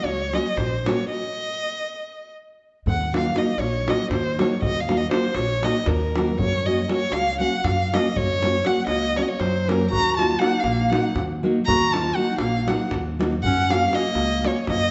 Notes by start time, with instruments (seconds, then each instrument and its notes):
0.04 upright bass C#2, violin C#5, davul high
0.33 nylon-string guitar F#3 A#3 C#4 F#4, violin D#5, davul high
0.56 upright bass A#1, violin C5, davul high, davul low
0.86 nylon-string guitar F#3 A#3 C#4 F#4, violin C#5, davul high
1.10 violin D#5
2.86 upright bass D#2, violin F#5, davul low
3.01 davul high
3.13 nylon-string guitar F#3 A#3 D#4 F#4, violin F5, davul high
3.25 davul high
3.35 nylon-string guitar F#3 A#3 D#4 F#4, violin D#5, davul high
3.57 upright bass A#1, violin C#5, davul high
3.86 nylon-string guitar F#3 A#3 D#4 F#4, violin D#5, davul high
4.10 upright bass D#2, violin C5, davul high, davul low
4.39 nylon-string guitar F#3 A#3 D#4 F#4, violin C#5, davul high
4.62 upright bass D#2, violin D#5, davul low
4.76 davul high
4.80 violin F5
4.89 nylon-string guitar F#3 A#3 D#4 F#4, davul high
4.97 violin D#5, davul high
5.11 nylon-string guitar F#3 A#3 D#4 F#4, violin C5, davul high
5.35 upright bass A#1, violin C#5, davul high
5.63 nylon-string guitar F#3 A#3 D#4 F#4, violin D#5, davul high
5.86 upright bass D#2, violin A#4, davul high, davul low
6.16 nylon-string guitar F#3 A#3 D#4 F#4, davul high
6.39 upright bass F#2, violin C#5, davul low
6.53 davul high
6.66 nylon-string guitar F#3 A#3 C#4 F#4, violin D#5
6.78 davul high
6.84 violin D#5
6.88 nylon-string guitar F#3 A#3 C#4 F#4, violin C#5, davul high
7.11 upright bass C#2, violin F5, davul high
7.39 nylon-string guitar F#3 A#3 C#4 F#4, violin F#5
7.64 upright bass F#2, violin F5, davul high, davul low
7.93 nylon-string guitar F#3 A#3 C#4 F#4, violin D#5, davul high
8.16 upright bass F#2, violin C#5, davul low
8.42 nylon-string guitar F#3 A#3 C#4 F#4, davul high
8.54 davul high
8.65 nylon-string guitar F#3 A#3 C#4 F#4, violin F#5, davul high
8.76 davul high
8.87 upright bass C#2, clarinet A#3, violin D#5, davul high
9.02 davul high
9.16 nylon-string guitar F#3 A#3 C#4 F#4, clarinet A#3, violin C#5, davul high
9.22 clarinet C4, violin D#5
9.27 clarinet A#3, violin C#5, davul high
9.39 upright bass F#2, clarinet F#3, violin C5, davul high
9.55 davul high
9.67 clarinet F#3, nylon-string guitar F#3 A#3 C#4 F#4, violin A#4, davul high
9.81 davul high
9.91 upright bass D#2, clarinet F#4, violin A#5, davul low
10.06 davul high
10.17 nylon-string guitar F#3 A#3 D#4 F#4, clarinet F4, violin A5, davul high
10.31 davul high
10.39 nylon-string guitar F#3 A#3 D#4 F#4, clarinet D#4, violin F#5, davul high
10.60 upright bass A#1, clarinet A#3, violin F5, davul high
10.90 nylon-string guitar F#3 A#3 D#4 F#4, clarinet D#4, violin F#5, davul high
11.15 upright bass D#2, davul high, davul low
11.43 nylon-string guitar F#3 A#3 D#4 F#4
11.66 upright bass D#2, clarinet F#4, violin A#5, davul low
11.92 nylon-string guitar F#3 A#3 D#4 F#4, clarinet F4, violin A5, davul high
12.05 davul high
12.15 nylon-string guitar F#3 A#3 D#4 F#4, clarinet D#4, violin F#5
12.38 upright bass A#1, clarinet A#3, violin F5, davul high
12.66 nylon-string guitar F#3 A#3 D#4 F#4, violin F#5, davul high
12.71 clarinet D#4
12.91 upright bass D#2, davul high, davul low
13.19 nylon-string guitar F#3 A#3 D#4 F#4, davul high
13.43 upright bass F#2, clarinet C#4, violin F#5, davul low
13.57 davul high
13.69 nylon-string guitar F#3 A#3 C#4 F#4, clarinet C#4, violin F5, davul high
13.82 davul high
13.90 nylon-string guitar F#3 A#3 C#4 F#4, violin D#5, davul high
13.96 clarinet A#3
14.15 upright bass C#2, davul high
14.42 nylon-string guitar F#3 A#3 C#4 F#4, clarinet A#3, davul high
14.47 violin C#5
14.67 upright bass F#2, clarinet A#3, violin D#5, davul high, davul low